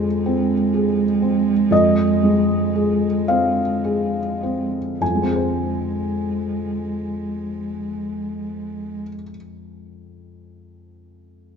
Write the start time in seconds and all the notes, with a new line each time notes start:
Already playing: F2 G#3 G#4 C5
0.26 C4
0.74 G#4
1.22 C4
1.71 F2 D#5
2.23 G#3
2.75 G#4
3.28 C4 F5
3.84 G#4
4.43 C4
5.00 F2 G#3 G#5
5.08 F3
5.15 G#3
5.22 C4
5.29 G#4
5.36 C5